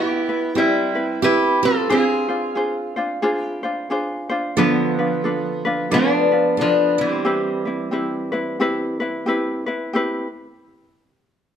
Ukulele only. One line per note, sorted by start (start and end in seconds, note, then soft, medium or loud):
0.00 0.29 E4 medium
0.00 0.28 G4 medium
0.00 0.28 B4 medium
0.29 0.55 E4 soft
0.29 0.55 B4 medium
0.56 0.95 C4 medium
0.56 0.95 E4 medium
0.56 0.96 G4 medium
0.56 0.94 B4 medium
0.95 1.22 C4 soft
0.95 1.22 E4 medium
0.95 1.22 B4 medium
1.22 1.63 C4 medium
1.22 1.63 E4 medium
1.22 1.62 G4 medium
1.22 1.61 B4 medium
1.62 1.89 C4 soft
1.62 1.89 B4 medium
1.89 2.29 D4 medium
1.89 2.28 F4 medium
1.89 2.29 G#4 medium
1.89 2.27 C5 medium
2.29 2.55 D4 soft
2.29 2.55 F4 medium
2.29 2.56 C5 soft
2.55 2.96 D4 medium
2.55 2.96 F4 medium
2.55 2.96 G#4 medium
2.55 2.95 C5 medium
2.96 3.21 D4 medium
2.96 3.22 F4 medium
2.96 3.22 C5 medium
3.22 3.63 D4 medium
3.22 3.63 F4 medium
3.22 3.63 G#4 medium
3.22 3.62 C5 medium
3.63 3.89 D4 soft
3.63 3.90 F4 medium
3.63 3.90 C5 medium
3.90 4.30 D4 medium
3.90 4.30 F4 medium
3.90 4.30 G#4 medium
3.90 4.28 C5 medium
4.29 4.56 D4 medium
4.29 4.57 F4 medium
4.29 4.57 C5 medium
4.57 4.97 D4 medium
4.57 4.98 F4 medium
4.57 4.97 A4 medium
4.57 4.97 B4 medium
4.99 5.24 D4 soft
4.99 5.24 F4 soft
4.99 5.25 B4 medium
5.24 5.65 D4 medium
5.24 5.65 F4 medium
5.24 5.64 A4 medium
5.24 5.64 B4 medium
5.65 5.90 D4 medium
5.65 5.91 F4 medium
5.65 5.91 B4 medium
5.91 6.31 D4 medium
5.91 6.31 F4 medium
5.91 6.31 A4 medium
5.91 6.30 B4 medium
6.32 6.57 D4 soft
6.32 6.59 F4 soft
6.32 6.58 B4 medium
6.58 6.99 D4 medium
6.58 6.99 F4 medium
6.58 6.98 A4 medium
6.58 6.97 B4 medium
6.98 7.24 D4 soft
6.98 7.24 B4 soft
7.25 7.65 C4 medium
7.25 7.66 E4 medium
7.25 7.65 G4 medium
7.25 7.64 B4 medium
7.65 7.91 C4 soft
7.65 7.91 E4 soft
7.65 7.92 B4 soft
7.91 8.32 C4 medium
7.91 8.32 E4 medium
7.91 8.32 G4 medium
7.91 8.31 B4 medium
8.32 8.59 C4 medium
8.32 8.59 E4 medium
8.32 8.59 B4 medium
8.60 9.00 C4 medium
8.60 9.00 E4 medium
8.60 9.00 G4 medium
8.60 8.99 B4 medium
9.00 9.26 C4 soft
9.00 9.26 E4 medium
9.00 9.27 B4 medium
9.26 9.67 C4 medium
9.26 9.67 E4 medium
9.26 9.67 G4 medium
9.26 9.65 B4 medium
9.66 9.93 C4 soft
9.66 9.94 E4 medium
9.66 9.93 B4 medium
9.93 10.26 C4 medium
9.93 10.27 E4 medium
9.93 10.26 G4 medium
9.93 10.27 B4 medium